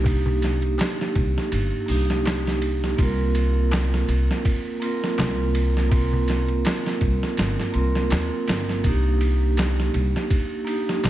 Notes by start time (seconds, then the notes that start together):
Already playing: C2 A#3 D4 D#4 G4
0.04 A#3 D4 D#4, kick, ride, darbuka dum
0.09 G4
0.26 darbuka dum
0.42 snare, ride
0.62 ride
0.78 snare, ride, darbuka tek
1.01 snare
1.15 C2, kick, ride
1.38 snare
1.52 G1, ride
1.86 C2 A#3 D4 D#4, open hi-hat
1.92 G4
2.10 snare
2.25 snare, ride, darbuka tek
2.47 snare
2.62 ride
2.84 snare
2.97 C2 A#3 C4 F4, kick, ride
3.02 A#4
3.35 ride
3.71 snare, ride, darbuka tek
3.94 snare
4.08 C2, ride
4.31 snare
4.45 kick, ride
4.80 A#3 C4 F4, ride
4.85 A#4
5.04 snare
5.18 C2, snare, ride, darbuka tek, darbuka dum
5.55 ride
5.77 snare
5.90 A#3 C4 F4, kick, ride, darbuka dum
5.95 A#4
6.13 darbuka dum
6.28 snare, ride
6.48 ride
6.65 snare, ride, darbuka tek
6.86 snare
7.01 C2, kick, ride
7.23 snare
7.37 G1, snare, ride
7.60 snare
7.72 C2 A#3 C4 F4, ride
7.78 A#4
7.95 snare
8.10 D#2, snare, ride, darbuka tek
8.48 G1, snare, ride
8.69 snare
8.83 C2 A#3 D4 D#4, kick, ride
8.88 G4
9.21 ride
9.57 snare, ride, darbuka tek
9.80 snare
9.94 C2, ride
10.16 snare
10.30 kick, ride
10.65 A#3 D4 D#4, ride
10.70 G4
10.89 snare
11.04 C2, snare, ride, darbuka tek, darbuka dum